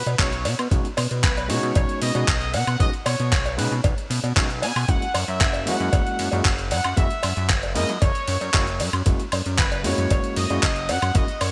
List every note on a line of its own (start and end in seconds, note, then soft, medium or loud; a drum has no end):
0.00 0.16 B4 medium
0.06 0.16 B2 medium
0.06 closed hi-hat soft
0.06 cowbell medium
0.19 0.47 B1 medium
0.19 0.28 G#3 loud
0.19 0.29 B3 medium
0.19 0.29 C#4 medium
0.19 0.29 D#4 medium
0.19 0.29 F#4 loud
0.19 0.57 C#5 medium
0.19 kick loud
0.19 clap loud
0.19 closed hi-hat medium
0.33 closed hi-hat soft
0.45 0.55 B2 loud
0.45 open hi-hat loud
0.45 ride medium
0.45 cowbell loud
0.59 0.68 B2 loud
0.59 closed hi-hat soft
0.59 high woodblock medium
0.71 0.81 B1 loud
0.71 0.86 G#3 medium
0.71 0.86 B3 medium
0.71 0.86 C#4 medium
0.71 0.86 D#4 medium
0.71 0.87 F#4 medium
0.71 kick loud
0.71 closed hi-hat medium
0.85 closed hi-hat soft
0.97 1.07 B2 medium
0.97 open hi-hat loud
0.97 ride medium
0.97 cowbell medium
0.97 high woodblock medium
1.11 1.25 B2 medium
1.11 closed hi-hat soft
1.24 1.51 B1 medium
1.24 1.48 B4 medium
1.24 kick loud
1.24 clap loud
1.24 closed hi-hat medium
1.37 closed hi-hat soft
1.37 cowbell medium
1.48 1.59 B2 loud
1.48 2.11 G#3 medium
1.48 2.12 B3 medium
1.48 2.12 C#4 medium
1.48 2.12 D#4 medium
1.48 2.12 F#4 loud
1.48 2.02 C#5 loud
1.48 open hi-hat loud
1.48 ride medium
1.63 1.72 B2 loud
1.63 closed hi-hat soft
1.75 1.85 B1 loud
1.75 kick loud
1.75 closed hi-hat medium
1.75 cowbell loud
1.89 closed hi-hat soft
2.02 2.12 B2 loud
2.02 2.26 D#5 loud
2.02 open hi-hat loud
2.02 ride medium
2.15 2.24 B2 loud
2.15 2.29 G#3 medium
2.15 2.29 B3 medium
2.15 2.30 C#4 medium
2.15 2.30 D#4 medium
2.15 2.30 F#4 medium
2.15 closed hi-hat soft
2.15 cowbell medium
2.28 2.56 B1 medium
2.28 2.52 D#5 loud
2.28 kick loud
2.28 clap loud
2.28 closed hi-hat medium
2.41 closed hi-hat soft
2.54 2.64 B2 loud
2.54 2.80 F#5 loud
2.54 open hi-hat loud
2.54 ride medium
2.54 cowbell loud
2.67 2.77 B2 loud
2.67 closed hi-hat soft
2.67 high woodblock medium
2.79 2.90 B1 loud
2.79 2.89 G#3 loud
2.79 2.89 B3 medium
2.79 2.90 C#4 medium
2.79 2.90 D#4 medium
2.79 2.90 F#4 loud
2.79 2.92 D#5 loud
2.79 kick loud
2.79 closed hi-hat medium
2.93 closed hi-hat soft
3.06 3.16 B2 medium
3.06 3.55 C#5 loud
3.06 open hi-hat loud
3.06 ride medium
3.06 cowbell loud
3.06 high woodblock medium
3.20 3.34 B2 loud
3.20 closed hi-hat soft
3.32 3.60 B1 medium
3.32 kick loud
3.32 clap loud
3.32 closed hi-hat medium
3.46 closed hi-hat soft
3.46 cowbell medium
3.57 3.68 B2 loud
3.57 3.73 G#3 loud
3.57 3.73 B3 medium
3.57 3.73 C#4 medium
3.57 3.73 D#4 medium
3.57 3.74 B4 loud
3.57 open hi-hat loud
3.57 ride medium
3.72 3.81 B2 loud
3.72 closed hi-hat soft
3.84 3.94 B1 loud
3.84 kick loud
3.84 closed hi-hat medium
3.84 cowbell loud
3.98 closed hi-hat soft
4.10 4.20 B2 loud
4.10 open hi-hat loud
4.10 ride medium
4.24 4.33 B2 loud
4.24 closed hi-hat soft
4.24 cowbell medium
4.36 4.64 B1 medium
4.36 4.46 G#3 loud
4.36 4.46 B3 medium
4.36 4.46 C#4 medium
4.36 4.46 D#4 medium
4.36 4.46 F#4 loud
4.36 kick loud
4.36 clap loud
4.36 closed hi-hat medium
4.50 closed hi-hat soft
4.62 4.72 B2 loud
4.62 4.87 G#5 loud
4.62 open hi-hat loud
4.62 ride medium
4.62 cowbell loud
4.76 4.85 B2 loud
4.76 open hi-hat medium
4.76 high woodblock medium
4.88 4.98 F#1 loud
4.88 5.04 G#3 medium
4.88 5.04 A#3 medium
4.88 5.04 C#4 medium
4.88 5.04 E4 medium
4.88 5.04 F#4 medium
4.88 5.28 F#5 loud
4.88 kick loud
4.88 closed hi-hat medium
5.02 closed hi-hat soft
5.14 5.25 F#2 medium
5.14 open hi-hat loud
5.14 ride medium
5.14 cowbell medium
5.14 high woodblock medium
5.28 5.42 F#2 loud
5.28 5.64 E5 loud
5.28 closed hi-hat soft
5.41 5.68 F#1 medium
5.41 kick loud
5.41 clap loud
5.41 closed hi-hat medium
5.53 closed hi-hat soft
5.53 cowbell medium
5.66 5.77 F#2 loud
5.66 6.29 G#3 medium
5.66 6.29 A#3 medium
5.66 6.29 C#4 medium
5.66 6.30 E4 medium
5.66 6.30 F#4 loud
5.66 6.46 F#5 loud
5.66 open hi-hat loud
5.66 ride medium
5.80 5.90 F#2 loud
5.80 closed hi-hat soft
5.93 6.03 F#1 loud
5.93 kick loud
5.93 closed hi-hat medium
5.93 cowbell medium
6.07 closed hi-hat soft
6.19 6.29 F#2 loud
6.19 open hi-hat loud
6.19 ride medium
6.32 6.42 F#2 loud
6.32 6.47 G#3 medium
6.32 6.47 A#3 medium
6.32 6.47 C#4 medium
6.32 6.47 E4 medium
6.32 6.47 F#4 medium
6.32 closed hi-hat soft
6.32 cowbell medium
6.45 6.73 F#1 medium
6.45 kick loud
6.45 clap loud
6.45 closed hi-hat medium
6.59 closed hi-hat soft
6.71 6.81 F#2 loud
6.71 6.96 F#5 loud
6.71 open hi-hat loud
6.71 ride medium
6.71 cowbell medium
6.84 6.94 F#2 loud
6.84 closed hi-hat soft
6.84 high woodblock medium
6.97 7.07 F#1 loud
6.97 7.07 G#3 loud
6.97 7.07 A#3 medium
6.97 7.07 C#4 medium
6.97 7.07 E4 medium
6.97 7.07 F#4 loud
6.97 7.49 E5 loud
6.97 kick loud
6.97 closed hi-hat medium
7.10 closed hi-hat soft
7.23 7.33 F#2 medium
7.23 open hi-hat loud
7.23 ride medium
7.23 cowbell medium
7.23 high woodblock medium
7.37 7.51 F#2 loud
7.37 closed hi-hat soft
7.49 7.78 F#1 medium
7.49 kick loud
7.49 clap loud
7.49 closed hi-hat medium
7.63 closed hi-hat soft
7.63 cowbell medium
7.75 7.86 F#2 loud
7.75 7.90 G#3 loud
7.75 7.90 A#3 medium
7.75 7.91 C#4 medium
7.75 7.91 E4 medium
7.75 7.91 A#4 loud
7.75 8.00 D#5 loud
7.75 open hi-hat loud
7.75 ride medium
7.89 7.98 F#2 loud
7.89 closed hi-hat soft
8.02 8.12 F#1 loud
8.02 8.80 C#5 loud
8.02 kick loud
8.02 closed hi-hat medium
8.02 cowbell medium
8.15 closed hi-hat soft
8.28 8.38 F#2 loud
8.28 open hi-hat loud
8.28 ride medium
8.41 8.50 F#2 medium
8.41 closed hi-hat soft
8.41 cowbell medium
8.53 8.82 F#1 medium
8.53 8.63 G#3 loud
8.53 8.63 A#3 medium
8.53 8.63 C#4 medium
8.53 8.63 E4 medium
8.53 8.64 F#4 loud
8.53 kick loud
8.53 clap loud
8.53 closed hi-hat loud
8.67 closed hi-hat soft
8.80 8.90 F#2 loud
8.80 open hi-hat loud
8.80 ride medium
8.80 cowbell medium
8.93 9.03 F#2 loud
8.93 closed hi-hat soft
8.93 high woodblock medium
9.06 9.16 F#1 loud
9.06 9.21 G#3 medium
9.06 9.21 A#3 medium
9.06 9.21 C#4 medium
9.06 9.21 E4 medium
9.06 9.21 F#4 medium
9.06 kick loud
9.06 closed hi-hat loud
9.20 closed hi-hat soft
9.32 9.42 F#2 medium
9.32 open hi-hat loud
9.32 ride medium
9.32 cowbell medium
9.32 high woodblock medium
9.46 9.60 F#2 medium
9.46 closed hi-hat soft
9.58 9.86 F#1 medium
9.58 9.83 B4 medium
9.58 kick loud
9.58 clap loud
9.58 closed hi-hat medium
9.72 closed hi-hat soft
9.72 cowbell medium
9.83 9.94 F#2 medium
9.83 10.46 G#3 medium
9.83 10.47 A#3 medium
9.83 10.47 C#4 medium
9.83 10.47 E4 medium
9.83 10.47 F#4 medium
9.83 10.33 C#5 loud
9.83 open hi-hat loud
9.83 ride medium
9.98 10.07 F#2 loud
9.98 closed hi-hat soft
10.10 10.20 F#1 loud
10.10 kick loud
10.10 closed hi-hat loud
10.10 cowbell medium
10.24 closed hi-hat soft
10.36 10.47 F#2 loud
10.36 10.62 D#5 loud
10.36 open hi-hat loud
10.36 ride medium
10.50 10.59 F#2 medium
10.50 10.65 G#3 medium
10.50 10.65 A#3 medium
10.50 10.65 C#4 medium
10.50 10.65 E4 medium
10.50 10.65 F#4 medium
10.50 closed hi-hat soft
10.50 cowbell medium
10.63 10.91 F#1 medium
10.63 10.87 D#5 loud
10.63 kick loud
10.63 clap loud
10.63 closed hi-hat loud
10.76 closed hi-hat soft
10.89 10.99 F#2 loud
10.89 11.15 F#5 loud
10.89 open hi-hat loud
10.89 ride medium
10.89 cowbell medium
11.02 11.12 F#2 loud
11.02 closed hi-hat soft
11.02 high woodblock medium
11.14 11.25 F#1 loud
11.14 11.24 G#3 loud
11.14 11.24 A#3 medium
11.14 11.24 C#4 medium
11.14 11.24 E4 medium
11.14 11.25 F#4 loud
11.14 11.42 D#5 loud
11.14 kick loud
11.14 closed hi-hat loud
11.28 closed hi-hat soft
11.41 11.51 F#2 loud
11.41 11.52 C#5 loud
11.41 open hi-hat loud
11.41 ride medium
11.41 cowbell medium
11.41 high woodblock medium